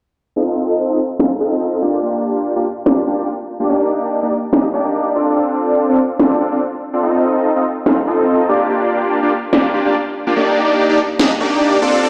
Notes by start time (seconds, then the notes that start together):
0.36 C4 D#4 F4 A4 D#5
0.89 C4 D#4 F4 A4 D#5
1.20 C4 D#4 F4 A4 F5, snare
1.40 C4 D#4 F4 A4 D#5
1.82 A#3 D4 F4 G4 D5
2.03 A#3 D4 F4 G4 D5
2.56 A#3 D4 F4 G4 D5
2.86 A#3 D4 F4 G4 D5, snare
3.07 A#3 D4 F4 G4 D5
3.18 A#3 D4 F4 G4 D5
3.60 A#3 D4 F4 G4 D5
3.69 A#3 D4 D#4 G4 D5
4.22 A#3 D4 D#4 G4 D5
4.53 A#3 D4 D#4 G4 D#5, snare
4.74 A#3 D4 D#4 G4 D5
5.15 C4 D4 F4 A4 D5
5.36 C4 D4 F4 A4 D5
5.89 C4 D4 F4 A4 D5
6.19 C4 D4 F4 A4 D5, snare
6.40 C4 D4 F4 A4 D5
6.52 C4 D4 F4 A4 D5
6.93 C4 D4 F4 A4 D5
7.03 C4 D#4 F4 A4 D#5
7.56 C4 D#4 F4 A4 D#5
7.86 C4 D#4 F4 A4 F5, snare
8.07 C4 D#4 F4 A4 D#5
8.49 A#3 D4 F4 G4 D5
8.70 A#3 D4 F4 G4 D5
9.22 A#3 D4 F4 G4 D5
9.53 A#3 D4 F4 G4 D5, snare
9.74 A#3 D4 F4 G4 D5
9.85 A#3 D4 F4 G4 D5
10.27 A#3 D4 F4 G4 D5
10.36 A#3 D4 D#4 G4 D5
10.89 A#3 D4 D#4 G4 D5
11.19 A#3 D4 D#4 G4 D#5, snare
11.40 A#3 D4 D#4 G4 D5
11.82 C4 D4 F4 A4 D5
12.03 C4 D4 F4 A4 D5